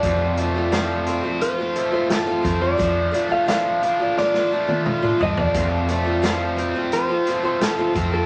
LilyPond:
<<
  \new Staff \with { instrumentName = "Clean electric guitar" } { \time 4/4 \key f \major \tempo 4 = 87 d''2 c''8. c''16 a'8. d''16~ | d''8. f''16 f''4 d''4 r8 ees''16 d''16~ | d''2 c''8. c''16 a'8. a'16 | }
  \new Staff \with { instrumentName = "Overdriven electric guitar" } { \time 4/4 \key f \major f,8 a8 f8 c'8 f'8 a8 f'8 c'8 | f8 a8 f8 d'8 f'8 a8 f'8 d'8 | f,8 a8 f8 c'8 f'8 a8 f'8 c'8 | }
  \new Staff \with { instrumentName = "Twelve-string acoustic guitar" } { \time 4/4 \key f \major <f, c f a c' f'>8 <f a c' f'>16 <f a c' f'>16 <f, c f a c' f'>8 <f a c' f'>16 <f a c' f'>8 <f a c' f'>16 <f a c' f'>16 <f a c' f'>8 <f, c f a c' f'>16 <f a c' f'>16 <f a c' f'>16 | <f a d' f'>8 <f a d' f'>16 <a d' f'>16 <f a d' f'>8 <f a d' f'>16 <a d' f'>8 <a d' f'>16 <f a d' f'>16 <a d' f'>8 <f a d' f'>16 <f a d' f'>8 | <f, c f a c' f'>8 <f a c' f'>16 <f a c' f'>16 <f, c f a c' f'>8 <f a c' f'>16 <f a c' f'>8 <f a c' f'>16 <f a c' f'>16 <f a c' f'>8 <f, c f a c' f'>16 <f a c' f'>16 <f a c' f'>16 | }
  \new Staff \with { instrumentName = "Fingered electric bass" } { \clef bass \time 4/4 \key f \major f,2 r4. f,8 | f,8 r2 r8. a,16 g,16 f,16 | f,2 r4. f,8 | }
  \new DrumStaff \with { instrumentName = "Drums" } \drummode { \time 4/4 <hh bd>8 hh8 <hh sn>8 hh8 hh8 hh8 <hh sn>8 <hh bd>8 | <hh bd>8 hh8 <hh sn>8 hh8 sn16 sn8 tommh16 toml8 tomfh16 tomfh16 | <hh bd>8 hh8 <hh sn>8 hh8 hh8 hh8 <hh sn>8 <hh bd>8 | }
>>